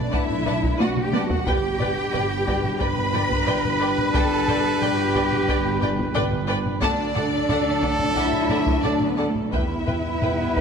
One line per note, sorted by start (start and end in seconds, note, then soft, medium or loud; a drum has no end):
0.00 1.30 A3 medium
0.00 0.14 D4 loud
0.00 1.30 D4 medium
0.00 1.15 B4 medium
0.00 0.14 D5 medium
0.11 0.73 B1 medium
0.11 0.79 E4 loud
0.11 0.20 B4 medium
0.11 0.19 D5 medium
0.11 0.81 E5 loud
0.11 0.21 F#5 medium
0.11 0.21 A5 medium
0.11 taiko medium
0.30 taiko low-mid medium
0.46 0.54 B4 medium
0.46 0.54 D5 medium
0.46 0.55 F#5 medium
0.46 0.55 A5 medium
0.46 taiko low-mid medium
0.63 taiko medium
0.79 1.39 B1 medium
0.79 1.03 F#4 loud
0.79 0.87 B4 medium
0.79 0.88 D5 medium
0.79 1.02 F#5 medium
0.79 0.88 F#5 medium
0.79 0.88 A5 medium
0.79 taiko high loud
0.97 taiko mid medium
1.02 1.26 G4 loud
1.02 1.25 G5 medium
1.13 1.21 B4 medium
1.13 1.21 D5 medium
1.13 1.22 F#5 medium
1.13 1.22 A5 medium
1.13 taiko high medium
1.24 1.48 F#4 loud
1.24 1.47 F#5 loud
1.30 taiko low loud
1.46 2.06 G1 medium
1.46 6.78 G3 medium
1.46 6.78 D4 medium
1.46 2.78 G4 loud
1.46 1.55 B4 medium
1.46 6.78 B4 loud
1.46 1.55 D5 medium
1.46 2.80 G5 loud
1.46 1.55 G5 medium
1.46 taiko loud
1.80 1.88 B4 medium
1.80 1.88 D5 medium
1.80 1.89 G5 medium
1.80 taiko low-mid medium
2.13 2.72 G1 medium
2.13 2.21 B4 medium
2.13 2.21 D5 medium
2.13 2.23 G5 medium
2.13 taiko low-mid medium
2.47 2.56 B4 medium
2.47 2.55 D5 medium
2.47 2.56 G5 medium
2.47 taiko medium
2.64 taiko low-mid medium
2.79 3.39 G1 loud
2.79 2.87 B4 medium
2.79 4.14 B4 loud
2.79 2.87 D5 medium
2.79 2.88 G5 medium
2.79 4.13 B5 loud
2.79 taiko medium
2.97 taiko low-mid soft
3.14 3.22 B4 medium
3.14 3.22 D5 medium
3.14 3.22 G5 medium
3.14 taiko low-mid medium
3.31 taiko medium
3.47 4.06 G1 loud
3.47 3.55 B4 medium
3.47 3.55 D5 medium
3.47 3.56 G5 medium
3.47 taiko low-mid medium
3.65 taiko low-mid medium
3.80 3.88 B4 medium
3.80 3.88 D5 medium
3.80 3.90 G5 medium
3.98 taiko low-mid medium
4.13 4.74 G1 medium
4.13 4.82 A4 loud
4.13 4.22 B4 medium
4.13 4.22 D5 medium
4.13 4.23 G5 loud
4.13 4.80 A5 loud
4.13 taiko loud
4.48 4.58 B4 medium
4.48 4.57 D5 medium
4.48 4.57 G5 medium
4.48 taiko low-mid medium
4.81 5.41 G1 medium
4.81 6.15 G4 loud
4.81 4.91 B4 medium
4.81 4.91 D5 medium
4.81 6.15 G5 loud
4.81 4.90 G5 medium
4.81 taiko low-mid medium
5.15 5.24 B4 medium
5.15 5.24 D5 medium
5.15 5.23 G5 medium
5.15 taiko medium
5.33 taiko low-mid medium
5.49 6.08 G1 loud
5.49 5.57 B4 medium
5.49 5.57 D5 medium
5.49 5.57 G5 medium
5.49 taiko medium
5.66 taiko low-mid medium
5.82 5.90 B4 medium
5.82 5.90 D5 medium
5.82 5.90 G5 medium
5.82 taiko low-mid medium
5.99 taiko loud
6.15 6.75 G1 loud
6.15 6.23 B4 loud
6.15 6.23 D5 medium
6.15 6.23 G5 loud
6.15 taiko low-mid medium
6.32 taiko low-mid medium
6.47 6.57 B4 medium
6.47 6.56 D5 medium
6.47 6.56 G5 medium
6.66 taiko low-mid medium
6.81 7.42 D2 loud
6.81 9.49 F#3 loud
6.81 9.49 D4 loud
6.81 8.12 D4 loud
6.81 6.89 A4 medium
6.81 9.20 A4 loud
6.81 6.89 D5 medium
6.81 8.12 D5 loud
6.81 6.90 F#5 loud
6.81 6.90 A5 loud
6.81 taiko medium
7.15 7.23 A4 medium
7.15 7.23 D5 medium
7.15 7.23 F#5 medium
7.15 7.23 A5 medium
7.15 taiko low-mid medium
7.49 8.08 D2 medium
7.49 7.57 A4 medium
7.49 7.57 D5 medium
7.49 7.58 F#5 medium
7.49 7.57 A5 medium
7.49 taiko low-mid medium
7.82 7.90 A4 medium
7.82 7.91 D5 medium
7.82 7.91 F#5 medium
7.82 7.91 A5 medium
7.82 taiko loud
7.99 taiko low-mid medium
8.16 8.76 D2 loud
8.16 8.84 E4 loud
8.16 8.24 A4 medium
8.16 8.24 D5 medium
8.16 8.83 E5 loud
8.16 8.24 F#5 medium
8.16 8.24 A5 medium
8.16 taiko medium
8.32 taiko low-mid soft
8.49 8.58 A4 medium
8.49 8.57 D5 medium
8.49 8.57 F#5 medium
8.49 8.58 A5 medium
8.49 taiko low-mid medium
8.66 taiko loud
8.82 9.45 D2 medium
8.82 9.06 D4 loud
8.82 8.92 A4 medium
8.82 9.06 D5 loud
8.82 8.92 D5 medium
8.82 8.91 F#5 medium
8.82 8.91 A5 medium
8.82 taiko low-mid medium
9.01 taiko low-mid medium
9.06 9.30 B3 loud
9.06 9.29 B4 medium
9.17 9.26 A4 medium
9.17 9.26 D5 medium
9.17 9.25 F#5 medium
9.17 9.25 A5 medium
9.28 9.54 A3 medium
9.28 9.52 A4 medium
9.35 taiko low-mid medium
9.52 10.14 E2 medium
9.52 9.59 E2 soft
9.52 10.61 G3 medium
9.52 10.61 B3 medium
9.52 10.61 E4 loud
9.52 10.61 B4 loud
9.52 9.61 B4 medium
9.52 10.61 E5 medium
9.52 9.61 E5 medium
9.52 9.60 G5 medium
9.52 taiko loud
9.52 cymbal swell medium
9.61 9.67 E2 soft
9.68 9.74 E2 soft
9.75 9.81 E2 soft
9.82 9.90 E2 soft
9.87 9.95 B4 medium
9.87 9.95 E5 medium
9.87 9.95 G5 medium
9.87 taiko low-mid medium
9.91 9.97 E2 soft
9.99 10.04 E2 soft
10.06 10.13 E2 soft
10.14 10.20 E2 soft
10.21 10.28 E2 medium
10.21 10.61 E2 medium
10.21 10.30 B4 medium
10.21 10.30 E5 medium
10.21 10.30 G5 medium
10.21 taiko low-mid medium
10.29 10.36 E2 medium
10.37 10.44 E2 medium
10.45 10.51 E2 medium
10.52 10.58 E2 medium
10.52 10.61 B4 medium
10.57 10.61 E5 medium
10.57 10.61 G5 medium
10.57 taiko medium